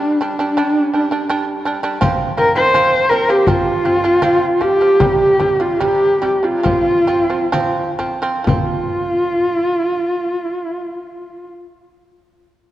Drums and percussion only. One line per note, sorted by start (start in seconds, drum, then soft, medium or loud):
2.02 frame drum medium
2.39 frame drum soft
2.75 frame drum soft
3.11 frame drum soft
3.47 frame drum medium
3.85 frame drum soft
4.22 frame drum medium
4.62 frame drum soft
5.00 frame drum medium
5.40 frame drum medium
5.82 frame drum soft
6.23 frame drum soft
6.66 frame drum medium
7.08 frame drum soft
7.54 frame drum medium
8.00 frame drum soft
8.47 frame drum medium